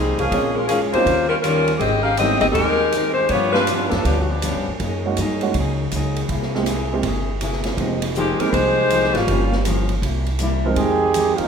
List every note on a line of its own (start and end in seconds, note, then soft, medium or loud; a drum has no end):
0.00 0.15 C2 medium
0.00 0.20 D#3 medium
0.00 0.21 F3 medium
0.00 0.20 G3 medium
0.00 0.21 A#3 medium
0.00 0.20 C4 medium
0.00 0.22 D#4 medium
0.00 0.18 G#4 medium
0.00 0.22 G#4 medium
0.18 0.31 C2 medium
0.18 0.54 F3 medium
0.18 0.55 A#3 medium
0.18 0.54 C#4 medium
0.18 0.54 G#4 medium
0.18 ride soft
0.31 0.90 A#1 medium
0.31 0.57 A#2 soft
0.31 0.58 G#3 soft
0.31 0.55 G#3 soft
0.31 0.55 A#3 soft
0.31 0.55 C4 soft
0.31 0.58 C#4 soft
0.31 0.55 C#4 soft
0.31 0.59 F4 medium
0.31 0.55 F4 medium
0.31 kick soft
0.31 ride medium
0.55 0.69 G#3 medium
0.55 0.67 C#4 medium
0.55 0.70 F4 medium
0.55 0.69 A#4 medium
0.67 0.95 A#2 medium
0.67 0.80 F3 medium
0.67 0.96 G#3 medium
0.67 0.79 A#3 medium
0.67 0.79 C#4 medium
0.67 0.96 C#4 medium
0.67 0.96 F4 medium
0.67 0.79 G#4 medium
0.67 hi-hat pedal medium
0.67 ride medium
0.92 1.06 G3 medium
0.92 1.28 A#3 medium
0.92 1.06 A#3 medium
0.92 1.07 C4 medium
0.92 1.07 C#4 medium
0.92 1.07 D#4 medium
0.92 1.28 F4 medium
0.92 1.28 G4 medium
0.92 1.28 C5 medium
0.92 muted upright bass stroke soft
0.92 ride soft
1.06 1.77 D#2 medium
1.06 1.33 D#3 soft
1.06 1.34 C#4 soft
1.06 1.34 G4 soft
1.06 kick soft
1.06 ride medium
1.10 1.34 C5 soft
1.29 1.36 G3 medium
1.29 1.36 C#4 medium
1.29 1.36 F4 medium
1.29 1.36 A#4 medium
1.42 1.70 D#3 medium
1.42 1.72 G3 medium
1.42 1.72 C#4 medium
1.42 1.71 C#4 medium
1.42 1.72 F4 medium
1.42 1.72 A#4 loud
1.42 hi-hat pedal medium
1.42 ride medium
1.46 1.71 G4 medium
1.46 1.71 C5 medium
1.68 ride soft
1.77 2.38 G#1 medium
1.77 2.07 G#2 soft
1.77 2.05 C4 medium
1.77 2.02 G4 medium
1.77 2.05 G#4 medium
1.77 1.81 D5 medium
1.77 2.05 D#5 loud
1.77 kick soft
1.77 ride medium
1.83 2.08 G3 soft
1.83 2.08 C4 medium
1.83 2.09 D#4 medium
2.03 2.17 C#4 medium
2.03 2.15 G4 medium
2.03 2.17 A#4 medium
2.03 2.17 F5 loud
2.16 2.45 G#2 medium
2.16 2.45 G3 medium
2.16 2.42 A3 soft
2.16 2.41 B3 soft
2.16 2.39 C4 medium
2.16 2.45 C4 medium
2.16 2.39 G4 medium
2.16 2.39 G#4 medium
2.16 2.39 D#5 loud
2.16 hi-hat pedal soft
2.16 ride medium
2.21 2.42 C#4 soft
2.21 2.46 D#4 medium
2.21 2.42 E4 soft
2.21 2.42 G#4 medium
2.40 2.54 G1 medium
2.40 2.76 G#3 soft
2.40 2.76 A#3 soft
2.40 2.47 C4 medium
2.40 2.76 C4 soft
2.40 2.76 D#4 soft
2.40 2.47 G4 medium
2.40 2.47 G#4 medium
2.40 2.47 D#5 medium
2.40 ride soft
2.44 2.76 G4 medium
2.53 3.26 D#2 medium
2.53 2.82 G#2 soft
2.53 3.12 G#3 medium
2.53 3.12 D#4 medium
2.53 3.12 G4 medium
2.53 3.12 A#4 loud
2.53 kick soft
2.53 ride medium
2.58 2.83 G3 soft
2.58 2.83 C4 soft
2.58 2.83 D#4 soft
2.92 3.19 G#2 medium
2.92 3.20 G3 medium
2.92 3.20 C4 medium
2.92 3.20 D#4 medium
2.92 hi-hat pedal medium
2.92 ride medium
3.14 3.28 G#3 medium
3.14 3.29 D#4 medium
3.14 3.28 G4 medium
3.14 3.28 C5 medium
3.29 3.88 G2 medium
3.29 3.57 G2 soft
3.29 3.53 B3 medium
3.29 3.51 F4 medium
3.29 3.53 G4 medium
3.29 3.53 C#5 loud
3.29 kick soft
3.29 ride medium
3.33 3.58 F3 soft
3.33 3.58 B3 soft
3.33 3.58 C#4 soft
3.53 3.89 G3 medium
3.53 3.89 D4 medium
3.53 3.89 F4 medium
3.53 3.89 B4 loud
3.53 snare medium
3.67 3.94 G2 medium
3.67 3.95 F3 medium
3.67 4.25 G3 soft
3.67 4.25 B3 soft
3.67 4.25 C#4 soft
3.67 4.26 D4 soft
3.67 4.26 F4 medium
3.67 hi-hat pedal medium
3.67 ride medium
3.71 3.95 B3 medium
3.71 3.96 C#4 medium
3.90 4.04 F#2 medium
3.90 4.03 F3 medium
3.90 4.04 B3 medium
3.90 4.03 D4 medium
3.90 4.05 A4 medium
3.90 snare soft
3.90 ride soft
4.04 4.52 D2 medium
4.04 4.31 G2 soft
4.04 4.19 F3 medium
4.04 4.32 F3 soft
4.04 4.19 B3 medium
4.04 4.32 B3 soft
4.04 4.32 C#4 soft
4.04 4.19 D4 medium
4.04 4.19 G4 medium
4.04 kick soft
4.04 ride medium
4.20 4.30 F#4 medium
4.29 4.67 F3 medium
4.29 4.67 B3 medium
4.29 4.67 D4 medium
4.29 4.67 G4 medium
4.42 4.68 G2 medium
4.42 4.69 F3 medium
4.42 4.69 B3 medium
4.42 4.70 C#4 medium
4.42 hi-hat pedal medium
4.42 ride medium
4.55 4.67 G2 medium
4.68 4.79 F2 medium
4.80 5.15 F#2 medium
4.80 5.06 F#3 medium
4.80 5.06 A#3 medium
4.80 5.07 D#4 medium
4.80 5.07 G#4 medium
4.80 kick soft
4.80 ride medium
5.05 5.17 G#3 medium
5.05 5.17 A#3 medium
5.05 5.17 C#4 medium
5.05 5.18 D#4 medium
5.05 5.18 F#4 medium
5.17 5.53 G2 medium
5.17 5.44 F#3 medium
5.17 5.44 A#3 medium
5.17 5.45 D#4 medium
5.17 hi-hat pedal medium
5.17 ride medium
5.21 5.45 G#4 medium
5.41 5.54 G#3 medium
5.41 5.54 A#3 medium
5.41 5.54 C#4 medium
5.41 5.54 D#4 medium
5.41 5.54 F#4 medium
5.41 ride soft
5.54 5.89 C#2 medium
5.54 5.81 F#3 soft
5.54 5.82 A#3 soft
5.54 kick soft
5.54 ride medium
5.59 5.82 D#4 medium
5.59 5.83 G#4 medium
5.91 6.27 C#2 medium
5.91 6.19 F#3 medium
5.91 6.19 A#3 medium
5.91 6.19 D#4 medium
5.91 hi-hat pedal medium
5.91 ride medium
5.96 6.20 G#4 medium
6.16 ride medium
6.29 7.00 C2 medium
6.29 6.55 C3 soft
6.29 6.56 A#3 medium
6.29 6.56 E4 medium
6.29 kick soft
6.29 ride medium
6.33 6.57 G#4 medium
6.42 snare soft
6.55 6.66 G#3 medium
6.55 6.66 A#3 medium
6.55 6.66 C4 medium
6.55 6.67 E4 medium
6.55 6.67 G4 medium
6.55 snare soft
6.66 6.93 C3 medium
6.66 6.93 A#3 medium
6.66 6.93 E4 medium
6.66 6.93 G#4 medium
6.66 hi-hat pedal medium
6.66 ride medium
6.93 7.04 G#3 medium
6.93 7.04 A#3 medium
6.93 7.04 C4 medium
6.93 7.04 E4 medium
6.93 7.04 G4 medium
7.03 7.74 G1 medium
7.03 7.30 C3 medium
7.03 7.30 A#3 soft
7.03 7.31 E4 medium
7.03 kick soft
7.03 ride medium
7.08 7.31 G#4 medium
7.41 7.67 C3 medium
7.41 7.68 A#3 medium
7.41 7.68 E4 medium
7.41 7.68 G#4 medium
7.41 hi-hat pedal medium
7.41 ride medium
7.53 snare soft
7.63 snare soft
7.63 ride medium
7.77 8.36 F1 medium
7.77 8.04 F3 medium
7.77 8.01 G#3 soft
7.77 8.01 A#3 soft
7.77 8.05 A#3 medium
7.77 8.01 C4 soft
7.77 8.01 D#4 soft
7.77 8.05 D#4 medium
7.77 8.01 G4 medium
7.77 8.06 G#4 medium
7.77 kick soft
7.77 ride medium
8.02 ride medium
8.15 8.39 D#3 medium
8.15 8.42 F3 medium
8.15 8.38 G#3 medium
8.15 8.43 A#3 medium
8.15 8.40 C4 medium
8.15 8.43 D#4 medium
8.15 8.39 G4 medium
8.15 hi-hat pedal medium
8.19 8.43 G#4 medium
8.39 8.48 G#3 medium
8.39 8.53 G#3 medium
8.39 8.52 A#3 medium
8.39 8.52 C4 medium
8.39 8.48 D#4 medium
8.39 8.53 D#4 medium
8.39 8.49 G4 medium
8.39 8.53 G#4 medium
8.39 8.48 A#4 medium
8.39 muted upright bass stroke soft
8.39 ride soft
8.50 9.11 C2 medium
8.50 8.79 F3 soft
8.50 9.15 G#3 loud
8.50 9.15 D#4 loud
8.50 9.15 G4 medium
8.50 8.54 B4 medium
8.50 9.15 C5 loud
8.50 kick soft
8.50 ride medium
8.54 8.80 A#3 soft
8.54 8.80 D#4 soft
8.54 8.80 G#4 soft
8.90 9.17 F3 medium
8.90 9.17 A#3 medium
8.90 9.17 D#4 medium
8.90 9.18 G#4 medium
8.90 hi-hat pedal soft
8.90 ride medium
9.04 snare soft
9.13 9.27 G#1 medium
9.13 9.65 G3 medium
9.13 9.65 A#3 medium
9.13 9.65 C#4 medium
9.13 9.65 F4 medium
9.13 snare soft
9.13 ride soft
9.27 9.99 G1 medium
9.27 9.54 G2 medium
9.27 9.54 F3 medium
9.27 9.85 G3 soft
9.27 9.85 A#3 soft
9.27 9.55 A#3 medium
9.27 9.85 C#4 soft
9.27 9.55 C#4 medium
9.27 9.86 F4 soft
9.27 9.86 G4 medium
9.27 kick soft
9.27 ride medium
9.52 snare soft
9.65 9.91 G2 medium
9.65 9.91 F3 medium
9.65 9.92 A#3 medium
9.65 9.92 C#4 medium
9.65 hi-hat pedal medium
9.65 ride medium
9.89 ride soft
10.02 10.73 C2 medium
10.02 10.28 C3 medium
10.02 10.29 G3 soft
10.02 10.29 A#3 medium
10.02 kick soft
10.02 ride medium
10.06 10.30 E4 medium
10.26 ride soft
10.39 10.65 C3 medium
10.39 10.66 G3 medium
10.39 10.66 A#3 medium
10.39 10.67 E4 medium
10.39 hi-hat pedal medium
10.39 ride medium
10.65 10.76 F3 medium
10.65 10.77 G#3 medium
10.65 10.77 C4 medium
10.65 10.77 D#4 medium
10.65 10.77 A#4 medium
10.76 11.35 F2 medium
10.76 11.34 D#3 medium
10.76 11.03 F3 soft
10.76 11.04 G#3 medium
10.76 11.34 C4 medium
10.76 11.35 G4 medium
10.76 11.34 G#4 loud
10.76 kick soft
10.76 ride medium
10.80 11.04 D#4 medium
10.80 11.05 G4 medium
11.14 11.41 F3 medium
11.14 11.41 G#3 medium
11.14 11.41 D#4 medium
11.14 11.42 G4 medium
11.14 hi-hat pedal medium
11.14 ride medium
11.37 11.48 D#2 medium
11.37 11.48 G#3 medium
11.37 11.48 C4 medium
11.37 11.48 D#4 medium
11.37 11.48 F4 loud
11.37 ride medium